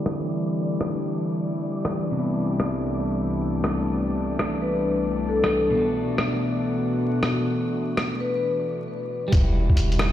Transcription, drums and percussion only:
0.06 cross-stick
0.81 cross-stick
1.85 cross-stick
2.60 cross-stick
3.64 cross-stick
4.39 cross-stick
5.44 cross-stick
6.18 cross-stick
7.23 cross-stick
7.97 cross-stick
9.32 kick, closed hi-hat
9.69 kick
9.77 closed hi-hat
9.92 closed hi-hat
9.99 cross-stick

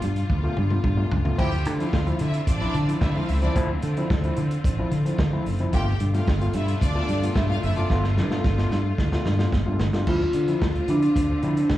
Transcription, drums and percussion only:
0.02 closed hi-hat
0.16 closed hi-hat
0.30 kick, high tom
0.57 mid tom
0.70 mid tom
0.84 kick, mid tom
1.11 floor tom
1.25 floor tom
1.39 kick, crash
1.52 closed hi-hat
1.65 closed hi-hat
1.80 closed hi-hat
1.93 kick, snare
2.07 closed hi-hat
2.19 closed hi-hat
2.34 closed hi-hat
2.47 kick, closed hi-hat
2.62 closed hi-hat
2.74 closed hi-hat
2.89 closed hi-hat
3.01 kick, snare
3.29 open hi-hat
3.42 closed hi-hat
3.56 kick, closed hi-hat
3.82 closed hi-hat
3.97 closed hi-hat
4.10 kick, snare
4.24 closed hi-hat
4.37 closed hi-hat
4.51 closed hi-hat
4.64 kick, closed hi-hat
4.91 closed hi-hat
5.06 closed hi-hat
5.18 kick, snare
5.46 open hi-hat
5.59 closed hi-hat
5.73 kick, closed hi-hat
5.87 snare
6.00 closed hi-hat
6.14 closed hi-hat
6.28 kick, snare
6.41 closed hi-hat
6.53 closed hi-hat
6.68 closed hi-hat
6.81 kick, closed hi-hat
7.08 closed hi-hat
7.23 closed hi-hat
7.35 kick, snare
7.63 open hi-hat
7.76 closed hi-hat
7.90 kick, snare
8.04 snare
8.17 snare
8.31 snare
8.44 kick, snare
8.58 snare
8.71 snare
8.98 kick, snare
9.12 snare
9.25 snare
9.39 snare
9.52 kick, snare
9.79 snare
9.93 snare
10.07 kick, crash
10.21 snare
10.33 closed hi-hat
10.48 closed hi-hat
10.62 kick, snare
10.75 closed hi-hat
10.88 closed hi-hat
11.02 closed hi-hat
11.16 kick, closed hi-hat
11.43 closed hi-hat
11.57 closed hi-hat
11.70 kick, snare

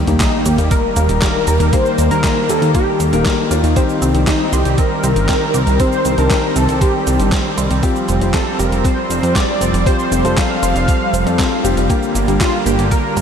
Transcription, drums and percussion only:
0.07 closed hi-hat, cabasa
0.20 kick, snare, clap, closed hi-hat, cabasa
0.46 closed hi-hat, cabasa
0.58 closed hi-hat, cabasa
0.71 kick, closed hi-hat, cabasa
0.96 closed hi-hat, cabasa
1.09 closed hi-hat, cabasa
1.22 kick, snare, clap, closed hi-hat, cabasa
1.47 closed hi-hat, cabasa
1.60 closed hi-hat, cabasa
1.73 kick, closed hi-hat, cabasa
1.86 cabasa
1.98 closed hi-hat, cabasa
2.11 closed hi-hat, cabasa
2.24 kick, snare, clap, closed hi-hat, cabasa
2.49 closed hi-hat, cabasa
2.62 closed hi-hat, cabasa
2.75 kick, closed hi-hat, cabasa
3.00 closed hi-hat, cabasa
3.13 closed hi-hat, cabasa
3.25 kick, snare, clap, closed hi-hat, cabasa
3.51 closed hi-hat, cabasa
3.64 closed hi-hat, cabasa
3.76 kick, closed hi-hat, cabasa
3.89 cabasa
4.02 closed hi-hat, cabasa
4.15 closed hi-hat, cabasa
4.27 kick, snare, clap, closed hi-hat, cabasa
4.53 closed hi-hat, cabasa
4.65 closed hi-hat, cabasa
4.78 kick, closed hi-hat, cabasa
5.04 closed hi-hat, cabasa
5.16 closed hi-hat, cabasa
5.29 kick, snare, clap, closed hi-hat, cabasa
5.54 closed hi-hat, cabasa
5.67 closed hi-hat, cabasa
5.80 kick, closed hi-hat, cabasa
5.92 cabasa
6.05 closed hi-hat, cabasa
6.18 closed hi-hat, cabasa
6.30 kick, snare, clap, closed hi-hat, cabasa
6.56 closed hi-hat, cabasa
6.69 closed hi-hat, cabasa
6.81 kick, closed hi-hat, cabasa
7.07 closed hi-hat, cabasa
7.20 closed hi-hat, cabasa
7.32 kick, snare, clap, closed hi-hat, cabasa
7.58 closed hi-hat, cabasa
7.71 closed hi-hat, cabasa
7.83 kick, closed hi-hat, cabasa
7.96 cabasa
8.09 closed hi-hat, cabasa
8.21 closed hi-hat, cabasa
8.34 kick, snare, clap, closed hi-hat, cabasa
8.60 closed hi-hat, cabasa
8.72 closed hi-hat, cabasa
8.85 kick, closed hi-hat, cabasa
9.11 closed hi-hat, cabasa
9.23 closed hi-hat, cabasa
9.35 kick, snare, clap, closed hi-hat, cabasa
9.61 closed hi-hat, cabasa
9.74 closed hi-hat, cabasa
9.86 kick, closed hi-hat, cabasa
9.99 cabasa
10.12 closed hi-hat, cabasa
10.25 closed hi-hat, cabasa
10.37 kick, snare, clap, closed hi-hat, cabasa
10.63 closed hi-hat, cabasa
10.76 closed hi-hat, cabasa
10.88 kick, closed hi-hat, cabasa
11.14 closed hi-hat, cabasa
11.27 closed hi-hat, cabasa
11.39 kick, snare, clap, closed hi-hat, cabasa
11.65 closed hi-hat, cabasa
11.77 closed hi-hat, cabasa
11.90 kick, closed hi-hat, cabasa
12.03 cabasa
12.15 closed hi-hat, cabasa
12.28 closed hi-hat, cabasa
12.40 kick, snare, clap, closed hi-hat, cabasa
12.66 closed hi-hat, cabasa
12.79 closed hi-hat, cabasa
12.91 kick, closed hi-hat, cabasa
13.17 closed hi-hat, cabasa

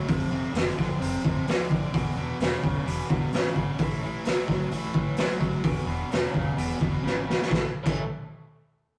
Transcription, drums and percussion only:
0.08 kick, open hi-hat
0.55 snare, open hi-hat
0.79 kick, snare
1.02 open hi-hat
1.25 kick
1.47 snare, open hi-hat
1.71 kick
1.94 kick, open hi-hat
2.40 snare, open hi-hat
2.64 kick
2.87 open hi-hat
3.10 kick
3.32 snare, open hi-hat
3.46 snare
3.56 kick
3.78 kick, open hi-hat
4.25 snare, open hi-hat
4.48 kick, snare
4.71 open hi-hat
4.94 kick
5.17 snare, open hi-hat
5.31 snare
5.41 kick
5.63 kick, open hi-hat
6.11 snare, open hi-hat
6.34 kick
6.58 open hi-hat
6.81 kick
7.06 snare
7.30 snare
7.42 snare
7.51 kick, snare
7.86 kick, crash

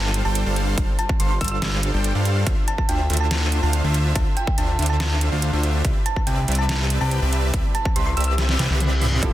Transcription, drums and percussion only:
0.14 closed hi-hat
0.35 closed hi-hat
0.56 closed hi-hat
0.78 kick, closed hi-hat
0.99 closed hi-hat
1.09 kick
1.20 closed hi-hat
1.41 kick, closed hi-hat
1.44 closed hi-hat
1.48 closed hi-hat
1.62 snare, closed hi-hat
1.83 closed hi-hat
2.04 closed hi-hat
2.25 closed hi-hat
2.47 kick, closed hi-hat
2.68 closed hi-hat
2.78 kick
2.89 closed hi-hat
3.10 closed hi-hat
3.13 closed hi-hat
3.17 closed hi-hat
3.31 snare, closed hi-hat
3.52 closed hi-hat
3.73 closed hi-hat
3.94 closed hi-hat
4.16 kick, closed hi-hat
4.37 closed hi-hat
4.47 kick
4.58 closed hi-hat
4.79 closed hi-hat
4.82 closed hi-hat
4.86 closed hi-hat
5.00 snare, closed hi-hat
5.21 closed hi-hat
5.42 closed hi-hat
5.63 closed hi-hat
5.85 kick, closed hi-hat
6.06 closed hi-hat
6.16 kick
6.27 closed hi-hat
6.48 closed hi-hat
6.52 closed hi-hat
6.55 closed hi-hat
6.69 snare, closed hi-hat
6.90 closed hi-hat
7.11 closed hi-hat
7.33 closed hi-hat
7.54 kick, closed hi-hat
7.75 closed hi-hat
7.85 kick
7.96 closed hi-hat
8.17 closed hi-hat
8.21 closed hi-hat
8.24 closed hi-hat
8.38 snare, closed hi-hat
8.49 snare
8.59 snare, closed hi-hat
8.70 mid tom
8.80 closed hi-hat, mid tom
9.02 mid tom, open hi-hat
9.12 mid tom
9.23 kick, closed hi-hat

